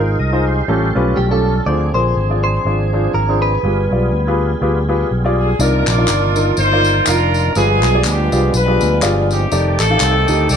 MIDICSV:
0, 0, Header, 1, 7, 480
1, 0, Start_track
1, 0, Key_signature, -3, "minor"
1, 0, Tempo, 491400
1, 1624, Time_signature, 4, 2, 24, 8
1, 10321, End_track
2, 0, Start_track
2, 0, Title_t, "Clean electric guitar"
2, 0, Program_c, 0, 27
2, 1145, Note_on_c, 0, 67, 78
2, 1279, Note_off_c, 0, 67, 0
2, 1283, Note_on_c, 0, 69, 74
2, 1625, Note_on_c, 0, 74, 95
2, 1637, Note_off_c, 0, 69, 0
2, 1894, Note_off_c, 0, 74, 0
2, 1898, Note_on_c, 0, 72, 96
2, 2343, Note_off_c, 0, 72, 0
2, 2379, Note_on_c, 0, 72, 96
2, 3067, Note_off_c, 0, 72, 0
2, 3071, Note_on_c, 0, 70, 73
2, 3336, Note_off_c, 0, 70, 0
2, 3340, Note_on_c, 0, 71, 81
2, 4949, Note_off_c, 0, 71, 0
2, 10321, End_track
3, 0, Start_track
3, 0, Title_t, "Grand piano"
3, 0, Program_c, 1, 0
3, 0, Note_on_c, 1, 63, 65
3, 0, Note_on_c, 1, 65, 66
3, 0, Note_on_c, 1, 68, 64
3, 0, Note_on_c, 1, 70, 86
3, 155, Note_off_c, 1, 63, 0
3, 159, Note_off_c, 1, 68, 0
3, 160, Note_off_c, 1, 65, 0
3, 161, Note_off_c, 1, 70, 0
3, 316, Note_on_c, 1, 65, 65
3, 317, Note_on_c, 1, 63, 81
3, 322, Note_on_c, 1, 68, 66
3, 324, Note_on_c, 1, 72, 87
3, 534, Note_off_c, 1, 63, 0
3, 534, Note_off_c, 1, 65, 0
3, 537, Note_off_c, 1, 68, 0
3, 537, Note_off_c, 1, 72, 0
3, 666, Note_on_c, 1, 61, 82
3, 669, Note_on_c, 1, 45, 59
3, 672, Note_on_c, 1, 65, 67
3, 674, Note_on_c, 1, 67, 65
3, 675, Note_on_c, 1, 69, 83
3, 824, Note_off_c, 1, 61, 0
3, 827, Note_off_c, 1, 65, 0
3, 828, Note_off_c, 1, 67, 0
3, 829, Note_off_c, 1, 69, 0
3, 932, Note_on_c, 1, 61, 80
3, 936, Note_on_c, 1, 65, 77
3, 939, Note_on_c, 1, 67, 69
3, 942, Note_on_c, 1, 71, 92
3, 1119, Note_off_c, 1, 61, 0
3, 1121, Note_off_c, 1, 65, 0
3, 1123, Note_off_c, 1, 67, 0
3, 1124, Note_off_c, 1, 71, 0
3, 1278, Note_on_c, 1, 61, 71
3, 1282, Note_on_c, 1, 65, 58
3, 1286, Note_on_c, 1, 67, 66
3, 1292, Note_on_c, 1, 69, 75
3, 1377, Note_off_c, 1, 45, 0
3, 1494, Note_off_c, 1, 61, 0
3, 1497, Note_off_c, 1, 65, 0
3, 1499, Note_off_c, 1, 67, 0
3, 1501, Note_off_c, 1, 69, 0
3, 1632, Note_on_c, 1, 62, 71
3, 1634, Note_on_c, 1, 65, 64
3, 1636, Note_on_c, 1, 50, 60
3, 1636, Note_on_c, 1, 68, 62
3, 1640, Note_on_c, 1, 72, 68
3, 1787, Note_off_c, 1, 62, 0
3, 1789, Note_off_c, 1, 65, 0
3, 1790, Note_off_c, 1, 68, 0
3, 1791, Note_off_c, 1, 72, 0
3, 1894, Note_on_c, 1, 62, 61
3, 1896, Note_on_c, 1, 65, 51
3, 1897, Note_on_c, 1, 68, 58
3, 1904, Note_on_c, 1, 70, 66
3, 2080, Note_off_c, 1, 62, 0
3, 2082, Note_off_c, 1, 65, 0
3, 2082, Note_off_c, 1, 68, 0
3, 2086, Note_off_c, 1, 70, 0
3, 2244, Note_on_c, 1, 62, 59
3, 2248, Note_on_c, 1, 65, 59
3, 2253, Note_on_c, 1, 68, 62
3, 2254, Note_on_c, 1, 74, 67
3, 2341, Note_off_c, 1, 50, 0
3, 2458, Note_off_c, 1, 62, 0
3, 2460, Note_off_c, 1, 65, 0
3, 2462, Note_off_c, 1, 68, 0
3, 2463, Note_off_c, 1, 74, 0
3, 2591, Note_on_c, 1, 62, 65
3, 2596, Note_on_c, 1, 65, 54
3, 2601, Note_on_c, 1, 68, 59
3, 2604, Note_on_c, 1, 74, 65
3, 2747, Note_off_c, 1, 62, 0
3, 2750, Note_off_c, 1, 65, 0
3, 2752, Note_off_c, 1, 68, 0
3, 2754, Note_off_c, 1, 74, 0
3, 2864, Note_on_c, 1, 62, 69
3, 2867, Note_on_c, 1, 65, 65
3, 2870, Note_on_c, 1, 68, 57
3, 2873, Note_on_c, 1, 72, 72
3, 3046, Note_off_c, 1, 62, 0
3, 3047, Note_off_c, 1, 65, 0
3, 3049, Note_off_c, 1, 68, 0
3, 3050, Note_off_c, 1, 72, 0
3, 3209, Note_on_c, 1, 62, 70
3, 3216, Note_on_c, 1, 65, 61
3, 3218, Note_on_c, 1, 68, 69
3, 3219, Note_on_c, 1, 72, 76
3, 3421, Note_off_c, 1, 62, 0
3, 3424, Note_off_c, 1, 65, 0
3, 3425, Note_off_c, 1, 68, 0
3, 3426, Note_off_c, 1, 72, 0
3, 3552, Note_on_c, 1, 65, 67
3, 3557, Note_on_c, 1, 67, 58
3, 3557, Note_on_c, 1, 68, 57
3, 3560, Note_on_c, 1, 43, 55
3, 3564, Note_on_c, 1, 71, 72
3, 3708, Note_off_c, 1, 65, 0
3, 3710, Note_off_c, 1, 67, 0
3, 3711, Note_off_c, 1, 68, 0
3, 3714, Note_off_c, 1, 71, 0
3, 3823, Note_on_c, 1, 65, 54
3, 3830, Note_on_c, 1, 67, 51
3, 3831, Note_on_c, 1, 68, 53
3, 3836, Note_on_c, 1, 74, 65
3, 4005, Note_off_c, 1, 65, 0
3, 4009, Note_off_c, 1, 67, 0
3, 4010, Note_off_c, 1, 68, 0
3, 4012, Note_off_c, 1, 74, 0
3, 4174, Note_on_c, 1, 65, 79
3, 4176, Note_on_c, 1, 67, 66
3, 4180, Note_on_c, 1, 68, 68
3, 4181, Note_on_c, 1, 71, 81
3, 4264, Note_off_c, 1, 43, 0
3, 4383, Note_off_c, 1, 65, 0
3, 4384, Note_off_c, 1, 67, 0
3, 4386, Note_off_c, 1, 68, 0
3, 4387, Note_off_c, 1, 71, 0
3, 4509, Note_on_c, 1, 65, 76
3, 4512, Note_on_c, 1, 67, 72
3, 4517, Note_on_c, 1, 68, 63
3, 4520, Note_on_c, 1, 71, 82
3, 4667, Note_off_c, 1, 65, 0
3, 4668, Note_off_c, 1, 67, 0
3, 4671, Note_off_c, 1, 68, 0
3, 4672, Note_off_c, 1, 71, 0
3, 4773, Note_on_c, 1, 65, 75
3, 4776, Note_on_c, 1, 67, 68
3, 4778, Note_on_c, 1, 68, 71
3, 4783, Note_on_c, 1, 71, 88
3, 4961, Note_off_c, 1, 65, 0
3, 4962, Note_off_c, 1, 67, 0
3, 4963, Note_off_c, 1, 68, 0
3, 4965, Note_off_c, 1, 71, 0
3, 5123, Note_on_c, 1, 65, 77
3, 5130, Note_on_c, 1, 67, 76
3, 5133, Note_on_c, 1, 68, 72
3, 5134, Note_on_c, 1, 74, 91
3, 5338, Note_off_c, 1, 65, 0
3, 5341, Note_off_c, 1, 67, 0
3, 5343, Note_off_c, 1, 68, 0
3, 5343, Note_off_c, 1, 74, 0
3, 5468, Note_on_c, 1, 63, 76
3, 5472, Note_on_c, 1, 65, 67
3, 5473, Note_on_c, 1, 48, 61
3, 5475, Note_on_c, 1, 70, 64
3, 5477, Note_on_c, 1, 74, 78
3, 5706, Note_off_c, 1, 63, 0
3, 5708, Note_off_c, 1, 65, 0
3, 5709, Note_off_c, 1, 70, 0
3, 5710, Note_off_c, 1, 74, 0
3, 5839, Note_on_c, 1, 63, 60
3, 5842, Note_on_c, 1, 65, 63
3, 5846, Note_on_c, 1, 70, 57
3, 5848, Note_on_c, 1, 74, 71
3, 6049, Note_off_c, 1, 63, 0
3, 6051, Note_off_c, 1, 65, 0
3, 6052, Note_off_c, 1, 70, 0
3, 6053, Note_off_c, 1, 74, 0
3, 6180, Note_off_c, 1, 48, 0
3, 6210, Note_on_c, 1, 63, 68
3, 6212, Note_on_c, 1, 65, 66
3, 6214, Note_on_c, 1, 70, 59
3, 6219, Note_on_c, 1, 75, 75
3, 6399, Note_off_c, 1, 63, 0
3, 6400, Note_off_c, 1, 65, 0
3, 6400, Note_off_c, 1, 70, 0
3, 6403, Note_off_c, 1, 75, 0
3, 6565, Note_on_c, 1, 65, 60
3, 6566, Note_on_c, 1, 63, 68
3, 6574, Note_on_c, 1, 70, 57
3, 6577, Note_on_c, 1, 74, 71
3, 6778, Note_off_c, 1, 65, 0
3, 6779, Note_off_c, 1, 63, 0
3, 6783, Note_off_c, 1, 70, 0
3, 6784, Note_off_c, 1, 74, 0
3, 6909, Note_on_c, 1, 63, 75
3, 6913, Note_on_c, 1, 65, 72
3, 6913, Note_on_c, 1, 70, 68
3, 6916, Note_on_c, 1, 77, 77
3, 7214, Note_off_c, 1, 63, 0
3, 7216, Note_off_c, 1, 70, 0
3, 7217, Note_off_c, 1, 65, 0
3, 7218, Note_off_c, 1, 77, 0
3, 7390, Note_on_c, 1, 65, 72
3, 7390, Note_on_c, 1, 68, 68
3, 7391, Note_on_c, 1, 67, 63
3, 7393, Note_on_c, 1, 43, 64
3, 7397, Note_on_c, 1, 71, 78
3, 7626, Note_off_c, 1, 65, 0
3, 7626, Note_off_c, 1, 67, 0
3, 7626, Note_off_c, 1, 68, 0
3, 7629, Note_off_c, 1, 71, 0
3, 7754, Note_on_c, 1, 65, 59
3, 7759, Note_on_c, 1, 67, 58
3, 7763, Note_on_c, 1, 68, 59
3, 7767, Note_on_c, 1, 74, 75
3, 7965, Note_off_c, 1, 65, 0
3, 7968, Note_off_c, 1, 67, 0
3, 7970, Note_off_c, 1, 68, 0
3, 7972, Note_off_c, 1, 74, 0
3, 8098, Note_off_c, 1, 43, 0
3, 8127, Note_on_c, 1, 65, 67
3, 8132, Note_on_c, 1, 67, 63
3, 8135, Note_on_c, 1, 68, 59
3, 8137, Note_on_c, 1, 74, 69
3, 8316, Note_off_c, 1, 65, 0
3, 8319, Note_off_c, 1, 67, 0
3, 8320, Note_off_c, 1, 68, 0
3, 8321, Note_off_c, 1, 74, 0
3, 8470, Note_on_c, 1, 65, 73
3, 8477, Note_on_c, 1, 67, 63
3, 8480, Note_on_c, 1, 68, 61
3, 8483, Note_on_c, 1, 71, 67
3, 8690, Note_off_c, 1, 65, 0
3, 8693, Note_off_c, 1, 67, 0
3, 8695, Note_off_c, 1, 68, 0
3, 8696, Note_off_c, 1, 71, 0
3, 8809, Note_on_c, 1, 65, 78
3, 8814, Note_on_c, 1, 67, 72
3, 8814, Note_on_c, 1, 68, 70
3, 8821, Note_on_c, 1, 74, 87
3, 9124, Note_off_c, 1, 65, 0
3, 9126, Note_off_c, 1, 67, 0
3, 9126, Note_off_c, 1, 68, 0
3, 9129, Note_off_c, 1, 74, 0
3, 9294, Note_on_c, 1, 63, 66
3, 9297, Note_on_c, 1, 67, 64
3, 9301, Note_on_c, 1, 69, 64
3, 9304, Note_on_c, 1, 74, 77
3, 9537, Note_off_c, 1, 63, 0
3, 9538, Note_off_c, 1, 67, 0
3, 9541, Note_off_c, 1, 69, 0
3, 9542, Note_off_c, 1, 74, 0
3, 9672, Note_on_c, 1, 63, 61
3, 9672, Note_on_c, 1, 67, 56
3, 9676, Note_on_c, 1, 69, 59
3, 9679, Note_on_c, 1, 77, 74
3, 9883, Note_off_c, 1, 63, 0
3, 9884, Note_off_c, 1, 67, 0
3, 9886, Note_off_c, 1, 69, 0
3, 9887, Note_off_c, 1, 77, 0
3, 10045, Note_on_c, 1, 63, 69
3, 10047, Note_on_c, 1, 67, 67
3, 10052, Note_on_c, 1, 69, 57
3, 10052, Note_on_c, 1, 75, 79
3, 10235, Note_off_c, 1, 63, 0
3, 10236, Note_off_c, 1, 67, 0
3, 10238, Note_off_c, 1, 69, 0
3, 10238, Note_off_c, 1, 75, 0
3, 10321, End_track
4, 0, Start_track
4, 0, Title_t, "Horn section"
4, 0, Program_c, 2, 61
4, 5271, Note_on_c, 2, 68, 74
4, 5459, Note_off_c, 2, 68, 0
4, 5468, Note_on_c, 2, 62, 66
4, 5468, Note_on_c, 2, 63, 68
4, 5472, Note_on_c, 2, 70, 94
4, 5738, Note_off_c, 2, 70, 0
4, 5747, Note_on_c, 2, 74, 95
4, 5752, Note_on_c, 2, 65, 67
4, 5752, Note_on_c, 2, 70, 67
4, 6221, Note_off_c, 2, 74, 0
4, 6387, Note_off_c, 2, 62, 0
4, 6387, Note_off_c, 2, 63, 0
4, 6415, Note_off_c, 2, 65, 0
4, 6427, Note_on_c, 2, 63, 89
4, 6427, Note_on_c, 2, 65, 83
4, 6428, Note_on_c, 2, 72, 112
4, 6664, Note_off_c, 2, 70, 0
4, 6873, Note_off_c, 2, 72, 0
4, 6899, Note_off_c, 2, 63, 0
4, 6909, Note_on_c, 2, 62, 69
4, 6911, Note_on_c, 2, 63, 76
4, 6921, Note_on_c, 2, 70, 97
4, 7346, Note_off_c, 2, 65, 0
4, 7353, Note_off_c, 2, 62, 0
4, 7354, Note_off_c, 2, 63, 0
4, 7391, Note_on_c, 2, 59, 70
4, 7391, Note_on_c, 2, 65, 67
4, 7392, Note_off_c, 2, 70, 0
4, 7401, Note_on_c, 2, 68, 90
4, 7853, Note_off_c, 2, 59, 0
4, 7865, Note_on_c, 2, 59, 68
4, 7868, Note_on_c, 2, 62, 60
4, 7872, Note_off_c, 2, 68, 0
4, 7881, Note_on_c, 2, 67, 83
4, 8307, Note_off_c, 2, 65, 0
4, 8334, Note_off_c, 2, 62, 0
4, 8345, Note_on_c, 2, 65, 78
4, 8346, Note_on_c, 2, 62, 72
4, 8352, Note_off_c, 2, 67, 0
4, 8353, Note_on_c, 2, 71, 99
4, 8784, Note_off_c, 2, 59, 0
4, 8794, Note_off_c, 2, 71, 0
4, 9088, Note_on_c, 2, 67, 88
4, 9096, Note_on_c, 2, 60, 59
4, 9096, Note_on_c, 2, 63, 60
4, 9264, Note_off_c, 2, 62, 0
4, 9264, Note_off_c, 2, 65, 0
4, 9536, Note_off_c, 2, 67, 0
4, 9564, Note_off_c, 2, 63, 0
4, 9568, Note_off_c, 2, 60, 0
4, 9571, Note_on_c, 2, 69, 101
4, 9575, Note_on_c, 2, 63, 64
4, 9580, Note_on_c, 2, 60, 71
4, 10223, Note_off_c, 2, 69, 0
4, 10257, Note_on_c, 2, 69, 80
4, 10260, Note_on_c, 2, 74, 127
4, 10262, Note_on_c, 2, 67, 92
4, 10321, Note_off_c, 2, 60, 0
4, 10321, Note_off_c, 2, 63, 0
4, 10321, Note_off_c, 2, 67, 0
4, 10321, Note_off_c, 2, 69, 0
4, 10321, Note_off_c, 2, 74, 0
4, 10321, End_track
5, 0, Start_track
5, 0, Title_t, "Tonewheel organ"
5, 0, Program_c, 3, 16
5, 0, Note_on_c, 3, 56, 61
5, 0, Note_on_c, 3, 63, 50
5, 0, Note_on_c, 3, 65, 58
5, 0, Note_on_c, 3, 72, 71
5, 172, Note_off_c, 3, 72, 0
5, 188, Note_on_c, 3, 75, 69
5, 191, Note_on_c, 3, 70, 56
5, 442, Note_off_c, 3, 75, 0
5, 444, Note_off_c, 3, 70, 0
5, 456, Note_on_c, 3, 72, 64
5, 463, Note_on_c, 3, 67, 51
5, 640, Note_off_c, 3, 65, 0
5, 641, Note_off_c, 3, 56, 0
5, 642, Note_off_c, 3, 63, 0
5, 665, Note_on_c, 3, 61, 68
5, 666, Note_on_c, 3, 55, 68
5, 667, Note_on_c, 3, 65, 66
5, 668, Note_on_c, 3, 69, 78
5, 911, Note_off_c, 3, 72, 0
5, 915, Note_off_c, 3, 67, 0
5, 1605, Note_off_c, 3, 61, 0
5, 1606, Note_off_c, 3, 55, 0
5, 1606, Note_off_c, 3, 65, 0
5, 1607, Note_off_c, 3, 69, 0
5, 1628, Note_on_c, 3, 60, 48
5, 1631, Note_on_c, 3, 53, 56
5, 1631, Note_on_c, 3, 62, 48
5, 1633, Note_on_c, 3, 67, 49
5, 1683, Note_on_c, 3, 68, 52
5, 1693, Note_off_c, 3, 67, 0
5, 3509, Note_off_c, 3, 60, 0
5, 3510, Note_off_c, 3, 53, 0
5, 3510, Note_off_c, 3, 62, 0
5, 3537, Note_off_c, 3, 68, 0
5, 3551, Note_on_c, 3, 55, 52
5, 3553, Note_on_c, 3, 59, 49
5, 3553, Note_on_c, 3, 68, 53
5, 3557, Note_on_c, 3, 65, 50
5, 5430, Note_off_c, 3, 55, 0
5, 5431, Note_off_c, 3, 59, 0
5, 5431, Note_off_c, 3, 68, 0
5, 5433, Note_off_c, 3, 65, 0
5, 5482, Note_on_c, 3, 58, 52
5, 5482, Note_on_c, 3, 74, 54
5, 5483, Note_on_c, 3, 65, 59
5, 5486, Note_on_c, 3, 51, 52
5, 7354, Note_off_c, 3, 58, 0
5, 7354, Note_off_c, 3, 65, 0
5, 7354, Note_off_c, 3, 74, 0
5, 7356, Note_off_c, 3, 51, 0
5, 7380, Note_on_c, 3, 59, 51
5, 7381, Note_on_c, 3, 55, 58
5, 7382, Note_on_c, 3, 53, 58
5, 7382, Note_on_c, 3, 56, 49
5, 9262, Note_off_c, 3, 59, 0
5, 9263, Note_off_c, 3, 53, 0
5, 9263, Note_off_c, 3, 55, 0
5, 9263, Note_off_c, 3, 56, 0
5, 9294, Note_on_c, 3, 67, 61
5, 9297, Note_on_c, 3, 51, 51
5, 9297, Note_on_c, 3, 57, 53
5, 9298, Note_on_c, 3, 74, 53
5, 10321, Note_off_c, 3, 51, 0
5, 10321, Note_off_c, 3, 57, 0
5, 10321, Note_off_c, 3, 67, 0
5, 10321, Note_off_c, 3, 74, 0
5, 10321, End_track
6, 0, Start_track
6, 0, Title_t, "Fingered electric bass"
6, 0, Program_c, 4, 33
6, 0, Note_on_c, 4, 32, 76
6, 150, Note_off_c, 4, 32, 0
6, 187, Note_on_c, 4, 36, 77
6, 594, Note_off_c, 4, 36, 0
6, 665, Note_on_c, 4, 33, 82
6, 894, Note_off_c, 4, 33, 0
6, 936, Note_on_c, 4, 35, 85
6, 1114, Note_off_c, 4, 35, 0
6, 1147, Note_on_c, 4, 35, 92
6, 1554, Note_off_c, 4, 35, 0
6, 1622, Note_on_c, 4, 38, 96
6, 1853, Note_off_c, 4, 38, 0
6, 1890, Note_on_c, 4, 34, 80
6, 2070, Note_off_c, 4, 34, 0
6, 2105, Note_on_c, 4, 32, 84
6, 2513, Note_off_c, 4, 32, 0
6, 2589, Note_on_c, 4, 32, 79
6, 2995, Note_off_c, 4, 32, 0
6, 3068, Note_on_c, 4, 32, 80
6, 3475, Note_off_c, 4, 32, 0
6, 3547, Note_on_c, 4, 31, 86
6, 3776, Note_off_c, 4, 31, 0
6, 3820, Note_on_c, 4, 35, 77
6, 3997, Note_off_c, 4, 35, 0
6, 4026, Note_on_c, 4, 38, 74
6, 4434, Note_off_c, 4, 38, 0
6, 4508, Note_on_c, 4, 38, 83
6, 4915, Note_off_c, 4, 38, 0
6, 4990, Note_on_c, 4, 35, 79
6, 5396, Note_off_c, 4, 35, 0
6, 5462, Note_on_c, 4, 36, 107
6, 5693, Note_off_c, 4, 36, 0
6, 5731, Note_on_c, 4, 34, 82
6, 5911, Note_off_c, 4, 34, 0
6, 5943, Note_on_c, 4, 31, 89
6, 6352, Note_off_c, 4, 31, 0
6, 6423, Note_on_c, 4, 31, 94
6, 6832, Note_off_c, 4, 31, 0
6, 6907, Note_on_c, 4, 29, 92
6, 7314, Note_off_c, 4, 29, 0
6, 7383, Note_on_c, 4, 31, 96
6, 7651, Note_off_c, 4, 31, 0
6, 7651, Note_on_c, 4, 35, 87
6, 7830, Note_off_c, 4, 35, 0
6, 7863, Note_on_c, 4, 38, 89
6, 8092, Note_off_c, 4, 38, 0
6, 8131, Note_on_c, 4, 36, 89
6, 8310, Note_off_c, 4, 36, 0
6, 8339, Note_on_c, 4, 35, 91
6, 8570, Note_off_c, 4, 35, 0
6, 8613, Note_on_c, 4, 38, 84
6, 8792, Note_off_c, 4, 38, 0
6, 8822, Note_on_c, 4, 31, 92
6, 9230, Note_off_c, 4, 31, 0
6, 9299, Note_on_c, 4, 29, 100
6, 9529, Note_off_c, 4, 29, 0
6, 9567, Note_on_c, 4, 33, 88
6, 9748, Note_off_c, 4, 33, 0
6, 9776, Note_on_c, 4, 36, 88
6, 10007, Note_off_c, 4, 36, 0
6, 10047, Note_on_c, 4, 38, 83
6, 10227, Note_off_c, 4, 38, 0
6, 10254, Note_on_c, 4, 36, 86
6, 10321, Note_off_c, 4, 36, 0
6, 10321, End_track
7, 0, Start_track
7, 0, Title_t, "Drums"
7, 5467, Note_on_c, 9, 54, 69
7, 5565, Note_off_c, 9, 54, 0
7, 5734, Note_on_c, 9, 39, 83
7, 5734, Note_on_c, 9, 54, 60
7, 5832, Note_off_c, 9, 39, 0
7, 5832, Note_off_c, 9, 54, 0
7, 5936, Note_on_c, 9, 39, 89
7, 5936, Note_on_c, 9, 54, 85
7, 6034, Note_off_c, 9, 39, 0
7, 6034, Note_off_c, 9, 54, 0
7, 6211, Note_on_c, 9, 54, 57
7, 6308, Note_off_c, 9, 54, 0
7, 6416, Note_on_c, 9, 54, 75
7, 6514, Note_off_c, 9, 54, 0
7, 6686, Note_on_c, 9, 54, 61
7, 6783, Note_off_c, 9, 54, 0
7, 6898, Note_on_c, 9, 39, 96
7, 6898, Note_on_c, 9, 54, 91
7, 6995, Note_off_c, 9, 39, 0
7, 6995, Note_off_c, 9, 54, 0
7, 7172, Note_on_c, 9, 54, 49
7, 7270, Note_off_c, 9, 54, 0
7, 7378, Note_on_c, 9, 54, 66
7, 7475, Note_off_c, 9, 54, 0
7, 7647, Note_on_c, 9, 39, 81
7, 7647, Note_on_c, 9, 54, 57
7, 7745, Note_off_c, 9, 39, 0
7, 7745, Note_off_c, 9, 54, 0
7, 7856, Note_on_c, 9, 39, 96
7, 7856, Note_on_c, 9, 54, 91
7, 7954, Note_off_c, 9, 39, 0
7, 7954, Note_off_c, 9, 54, 0
7, 8129, Note_on_c, 9, 54, 51
7, 8227, Note_off_c, 9, 54, 0
7, 8339, Note_on_c, 9, 54, 78
7, 8437, Note_off_c, 9, 54, 0
7, 8603, Note_on_c, 9, 54, 64
7, 8701, Note_off_c, 9, 54, 0
7, 8813, Note_on_c, 9, 39, 98
7, 8813, Note_on_c, 9, 54, 92
7, 8911, Note_off_c, 9, 39, 0
7, 8911, Note_off_c, 9, 54, 0
7, 9090, Note_on_c, 9, 54, 50
7, 9187, Note_off_c, 9, 54, 0
7, 9295, Note_on_c, 9, 54, 64
7, 9393, Note_off_c, 9, 54, 0
7, 9569, Note_on_c, 9, 39, 78
7, 9569, Note_on_c, 9, 54, 60
7, 9667, Note_off_c, 9, 39, 0
7, 9667, Note_off_c, 9, 54, 0
7, 9769, Note_on_c, 9, 39, 87
7, 9769, Note_on_c, 9, 54, 83
7, 9866, Note_off_c, 9, 39, 0
7, 9866, Note_off_c, 9, 54, 0
7, 10041, Note_on_c, 9, 54, 53
7, 10139, Note_off_c, 9, 54, 0
7, 10248, Note_on_c, 9, 54, 79
7, 10321, Note_off_c, 9, 54, 0
7, 10321, End_track
0, 0, End_of_file